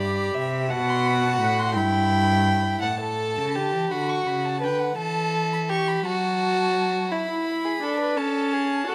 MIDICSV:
0, 0, Header, 1, 5, 480
1, 0, Start_track
1, 0, Key_signature, 2, "major"
1, 0, Tempo, 710059
1, 475, Time_signature, 6, 3, 24, 8
1, 6050, End_track
2, 0, Start_track
2, 0, Title_t, "Violin"
2, 0, Program_c, 0, 40
2, 0, Note_on_c, 0, 83, 82
2, 478, Note_off_c, 0, 83, 0
2, 482, Note_on_c, 0, 81, 77
2, 600, Note_on_c, 0, 84, 84
2, 610, Note_off_c, 0, 81, 0
2, 721, Note_on_c, 0, 83, 76
2, 731, Note_off_c, 0, 84, 0
2, 831, Note_off_c, 0, 83, 0
2, 835, Note_on_c, 0, 81, 74
2, 948, Note_off_c, 0, 81, 0
2, 957, Note_on_c, 0, 83, 82
2, 1076, Note_on_c, 0, 84, 82
2, 1086, Note_off_c, 0, 83, 0
2, 1195, Note_on_c, 0, 83, 92
2, 1205, Note_off_c, 0, 84, 0
2, 1910, Note_off_c, 0, 83, 0
2, 1914, Note_on_c, 0, 81, 88
2, 2620, Note_off_c, 0, 81, 0
2, 2643, Note_on_c, 0, 83, 79
2, 2764, Note_on_c, 0, 85, 67
2, 2775, Note_off_c, 0, 83, 0
2, 2883, Note_on_c, 0, 83, 65
2, 2894, Note_off_c, 0, 85, 0
2, 3005, Note_on_c, 0, 81, 71
2, 3015, Note_off_c, 0, 83, 0
2, 3132, Note_on_c, 0, 79, 70
2, 3143, Note_off_c, 0, 81, 0
2, 3250, Note_on_c, 0, 78, 76
2, 3260, Note_off_c, 0, 79, 0
2, 3363, Note_off_c, 0, 78, 0
2, 3367, Note_on_c, 0, 81, 83
2, 3722, Note_off_c, 0, 81, 0
2, 3736, Note_on_c, 0, 83, 75
2, 3782, Note_off_c, 0, 83, 0
2, 3854, Note_on_c, 0, 85, 84
2, 3974, Note_on_c, 0, 83, 79
2, 3984, Note_off_c, 0, 85, 0
2, 4088, Note_on_c, 0, 81, 86
2, 4098, Note_off_c, 0, 83, 0
2, 4804, Note_off_c, 0, 81, 0
2, 4808, Note_on_c, 0, 83, 95
2, 5523, Note_on_c, 0, 81, 82
2, 5533, Note_off_c, 0, 83, 0
2, 6050, Note_off_c, 0, 81, 0
2, 6050, End_track
3, 0, Start_track
3, 0, Title_t, "Violin"
3, 0, Program_c, 1, 40
3, 0, Note_on_c, 1, 74, 66
3, 231, Note_on_c, 1, 76, 76
3, 241, Note_off_c, 1, 74, 0
3, 471, Note_on_c, 1, 78, 96
3, 482, Note_off_c, 1, 76, 0
3, 1176, Note_off_c, 1, 78, 0
3, 1180, Note_on_c, 1, 79, 104
3, 1893, Note_off_c, 1, 79, 0
3, 1905, Note_on_c, 1, 78, 71
3, 2022, Note_off_c, 1, 78, 0
3, 2031, Note_on_c, 1, 69, 95
3, 2402, Note_on_c, 1, 67, 98
3, 2412, Note_off_c, 1, 69, 0
3, 2645, Note_on_c, 1, 66, 96
3, 2655, Note_off_c, 1, 67, 0
3, 3116, Note_off_c, 1, 66, 0
3, 3120, Note_on_c, 1, 71, 93
3, 3359, Note_off_c, 1, 71, 0
3, 3365, Note_on_c, 1, 69, 108
3, 3849, Note_on_c, 1, 67, 101
3, 3859, Note_off_c, 1, 69, 0
3, 4088, Note_off_c, 1, 67, 0
3, 4095, Note_on_c, 1, 66, 112
3, 4809, Note_on_c, 1, 64, 86
3, 4820, Note_off_c, 1, 66, 0
3, 5169, Note_on_c, 1, 68, 71
3, 5179, Note_off_c, 1, 64, 0
3, 5291, Note_on_c, 1, 69, 82
3, 5301, Note_off_c, 1, 68, 0
3, 5404, Note_off_c, 1, 69, 0
3, 5408, Note_on_c, 1, 71, 82
3, 5523, Note_on_c, 1, 69, 89
3, 5533, Note_off_c, 1, 71, 0
3, 5765, Note_on_c, 1, 68, 83
3, 5775, Note_off_c, 1, 69, 0
3, 6000, Note_on_c, 1, 69, 86
3, 6011, Note_off_c, 1, 68, 0
3, 6050, Note_off_c, 1, 69, 0
3, 6050, End_track
4, 0, Start_track
4, 0, Title_t, "Viola"
4, 0, Program_c, 2, 41
4, 0, Note_on_c, 2, 67, 74
4, 459, Note_off_c, 2, 67, 0
4, 474, Note_on_c, 2, 66, 87
4, 1170, Note_off_c, 2, 66, 0
4, 1186, Note_on_c, 2, 64, 78
4, 1896, Note_off_c, 2, 64, 0
4, 4927, Note_on_c, 2, 64, 84
4, 5261, Note_off_c, 2, 64, 0
4, 5287, Note_on_c, 2, 62, 91
4, 5520, Note_on_c, 2, 61, 95
4, 5530, Note_off_c, 2, 62, 0
4, 5988, Note_off_c, 2, 61, 0
4, 5992, Note_on_c, 2, 66, 99
4, 6050, Note_off_c, 2, 66, 0
4, 6050, End_track
5, 0, Start_track
5, 0, Title_t, "Cello"
5, 0, Program_c, 3, 42
5, 0, Note_on_c, 3, 43, 89
5, 231, Note_off_c, 3, 43, 0
5, 235, Note_on_c, 3, 48, 90
5, 477, Note_on_c, 3, 47, 104
5, 487, Note_off_c, 3, 48, 0
5, 944, Note_off_c, 3, 47, 0
5, 948, Note_on_c, 3, 45, 91
5, 1184, Note_on_c, 3, 43, 105
5, 1194, Note_off_c, 3, 45, 0
5, 1903, Note_off_c, 3, 43, 0
5, 1907, Note_on_c, 3, 45, 73
5, 2277, Note_on_c, 3, 49, 78
5, 2288, Note_off_c, 3, 45, 0
5, 2400, Note_on_c, 3, 50, 71
5, 2410, Note_off_c, 3, 49, 0
5, 2521, Note_on_c, 3, 52, 71
5, 2531, Note_off_c, 3, 50, 0
5, 2641, Note_off_c, 3, 52, 0
5, 2645, Note_on_c, 3, 50, 74
5, 2879, Note_off_c, 3, 50, 0
5, 2883, Note_on_c, 3, 49, 74
5, 3125, Note_on_c, 3, 50, 65
5, 3135, Note_off_c, 3, 49, 0
5, 3358, Note_off_c, 3, 50, 0
5, 3362, Note_on_c, 3, 52, 79
5, 4071, Note_off_c, 3, 52, 0
5, 4085, Note_on_c, 3, 54, 81
5, 4791, Note_off_c, 3, 54, 0
5, 6050, End_track
0, 0, End_of_file